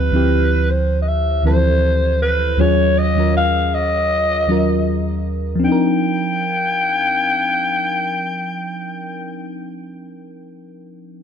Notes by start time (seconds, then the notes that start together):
Already playing: D2 F3 C4 E4 G4 B4
0.12 D2 F3 C4 E4
0.16 G4
0.70 C5
1.02 D#5
1.08 E5
1.43 D2 E3 C4 E4 C5
1.47 F3 A4
2.22 B4
2.57 D#2 F#3 C#4 F4 C#5
2.61 G#4
2.98 D#5
3.16 D#2 F#3 C#4 F4
3.20 A#4
3.37 F5
3.74 D#5
4.47 D#2 F#3 C#4 F4
4.52 A#4
5.55 F3
5.59 C4
5.64 D4 G5
5.68 D#4
5.72 A#4